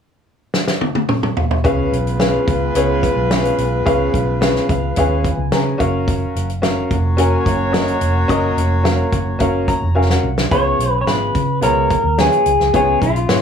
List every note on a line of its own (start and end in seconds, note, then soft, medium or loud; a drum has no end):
0.54 snare medium
0.68 snare medium
0.81 high tom medium
0.95 high tom medium
1.09 mid tom medium
1.23 mid tom medium
1.37 floor tom medium
1.51 floor tom medium
1.64 1.86 C#2 medium
1.64 2.44 C#3 medium
1.64 5.49 G#3 medium
1.64 5.49 B3 medium
1.64 1.93 C#4 loud
1.64 5.49 F4 medium
1.64 1.94 G#4 medium
1.64 1.94 B4 medium
1.64 5.49 B4 medium
1.64 1.94 F5 loud
1.64 kick medium
1.64 closed hi-hat medium
1.92 2.36 B1 medium
1.92 closed hi-hat medium
2.07 closed hi-hat soft
2.19 2.49 C#4 medium
2.19 2.49 G#4 medium
2.19 2.49 B4 medium
2.19 2.49 F5 medium
2.19 snare loud
2.19 closed hi-hat medium
2.48 2.69 C#2 medium
2.48 kick loud
2.48 closed hi-hat medium
2.75 3.08 C#2 loud
2.75 3.04 C#4 medium
2.75 3.05 G#4 medium
2.75 3.05 B4 medium
2.75 3.05 C#5 medium
2.75 closed hi-hat medium
3.03 kick medium
3.03 closed hi-hat medium
3.16 3.49 B1 medium
3.31 3.60 C#4 medium
3.31 3.60 G#4 medium
3.31 3.60 B4 medium
3.31 3.61 F5 medium
3.31 snare loud
3.31 closed hi-hat medium
3.45 closed hi-hat medium
3.58 3.80 B1 medium
3.58 closed hi-hat medium
3.85 4.08 C#2 medium
3.85 4.65 C#3 medium
3.85 4.15 C#4 medium
3.85 4.15 G#4 medium
3.85 4.16 B4 medium
3.85 4.15 F5 loud
3.85 kick medium
3.85 closed hi-hat medium
4.14 4.58 B1 medium
4.14 kick medium
4.14 closed hi-hat medium
4.41 4.70 C#4 medium
4.41 4.71 G#4 medium
4.41 4.71 B4 medium
4.41 4.69 F5 medium
4.41 snare medium
4.41 closed hi-hat medium
4.56 snare soft
4.69 4.91 C#2 medium
4.69 4.95 F5 medium
4.69 kick loud
4.69 closed hi-hat medium
4.96 5.30 D#2 medium
4.96 5.26 C#4 medium
4.96 5.26 G#4 medium
4.96 5.27 B4 medium
4.96 5.27 F5 medium
4.96 5.49 G#5 medium
4.96 kick medium
4.96 closed hi-hat medium
5.24 kick medium
5.24 closed hi-hat medium
5.37 5.49 C#2 medium
5.51 5.73 C#3 medium
5.51 5.77 C#4 medium
5.51 5.80 G#4 medium
5.51 5.80 B4 medium
5.51 5.80 G#5 medium
5.51 6.04 A#5 medium
5.51 snare loud
5.51 closed hi-hat medium
5.78 6.24 F#1 medium
5.78 6.46 C#4 medium
5.78 6.46 F#4 medium
5.78 6.46 A#4 medium
5.78 6.46 F5 medium
5.78 kick medium
5.78 closed hi-hat medium
6.08 kick loud
6.08 closed hi-hat medium
6.35 6.79 F#1 medium
6.35 closed hi-hat medium
6.50 closed hi-hat soft
6.62 6.92 C#4 medium
6.62 6.92 F#4 medium
6.62 6.92 A#4 medium
6.62 6.93 F5 medium
6.62 snare medium
6.62 closed hi-hat medium
6.91 7.35 F1 medium
6.91 9.93 A#3 medium
6.91 9.93 C#4 medium
6.91 9.93 F#4 medium
6.91 9.93 C#5 medium
6.91 kick medium
6.91 closed hi-hat medium
7.17 7.47 C#4 medium
7.17 7.47 F#4 medium
7.17 7.48 A#4 medium
7.17 7.48 G#5 medium
7.17 closed hi-hat medium
7.46 7.90 F#1 medium
7.46 kick medium
7.46 closed hi-hat medium
7.72 8.02 C#4 medium
7.72 8.03 F#4 medium
7.72 8.03 A#4 medium
7.72 8.03 D#5 medium
7.72 snare loud
7.72 closed hi-hat medium
7.88 closed hi-hat soft
8.01 8.23 F1 medium
8.01 closed hi-hat medium
8.28 8.51 F#1 medium
8.28 8.58 C#4 loud
8.28 8.59 F#4 medium
8.28 8.59 A#4 medium
8.28 8.59 D#5 loud
8.28 kick medium
8.28 closed hi-hat medium
8.57 9.01 F1 medium
8.57 closed hi-hat medium
8.83 9.14 C#4 medium
8.83 9.14 F#4 medium
8.83 9.14 A#4 medium
8.83 9.15 F5 medium
8.83 snare medium
8.83 closed hi-hat medium
9.12 9.35 F#1 medium
9.12 kick loud
9.12 closed hi-hat medium
9.39 9.74 F#1 medium
9.39 9.69 C#4 medium
9.39 9.70 F#4 medium
9.39 9.70 A#4 medium
9.39 9.70 F5 medium
9.39 kick medium
9.39 closed hi-hat medium
9.68 9.94 A#5 medium
9.68 kick medium
9.68 closed hi-hat medium
9.82 10.15 F1 medium
9.95 10.25 C#4 medium
9.95 10.25 F#4 medium
9.95 10.25 A#4 medium
9.95 10.26 F5 medium
9.95 10.09 G#5 medium
10.10 10.49 F#5 medium
10.10 snare medium
10.23 10.46 C2 medium
10.38 snare medium
10.51 10.74 C#2 medium
10.51 11.32 C#3 medium
10.51 10.81 B3 medium
10.51 10.81 F4 medium
10.51 10.82 G#4 medium
10.51 11.00 C#5 loud
10.51 10.82 C#5 medium
10.51 kick loud
10.51 closed hi-hat medium
10.79 11.01 B1 medium
10.79 closed hi-hat medium
11.01 11.07 C#5 medium
11.07 11.29 G#1 medium
11.07 11.37 B3 medium
11.07 11.37 F4 medium
11.07 11.37 G#4 medium
11.07 11.63 B4 medium
11.07 11.37 B4 medium
11.07 snare medium
11.07 closed hi-hat medium
11.35 11.63 C#3 medium
11.35 kick loud
11.35 closed hi-hat medium
11.61 11.96 C#2 medium
11.61 11.92 B3 medium
11.61 11.92 F4 medium
11.61 11.93 G#4 medium
11.61 12.21 A#4 loud
11.61 11.93 C#5 medium
11.61 closed hi-hat medium
11.90 kick medium
11.90 closed hi-hat medium
12.04 12.26 D#2 medium
12.18 12.48 B3 medium
12.18 12.48 F4 medium
12.18 12.48 G#4 medium
12.18 12.75 G#4 medium
12.18 12.49 C#5 medium
12.18 snare medium
12.18 closed hi-hat medium
12.32 closed hi-hat soft
12.46 12.57 C#2 medium
12.46 closed hi-hat medium
12.60 12.71 C#2 medium
12.60 snare soft
12.73 12.96 C#2 medium
12.73 13.42 C#3 medium
12.73 13.04 B3 medium
12.73 13.04 F4 medium
12.73 13.04 G#4 medium
12.73 13.02 G#4 medium
12.73 13.04 C#5 medium
12.73 kick medium
12.73 closed hi-hat medium
13.01 13.24 B1 medium
13.01 13.42 F4 medium
13.01 kick medium
13.01 closed hi-hat medium
13.16 closed hi-hat soft
13.29 13.42 G#1 medium
13.29 13.42 B3 medium
13.29 13.42 F4 medium
13.29 13.42 G#4 medium
13.29 13.42 C#5 medium
13.29 snare medium
13.29 closed hi-hat medium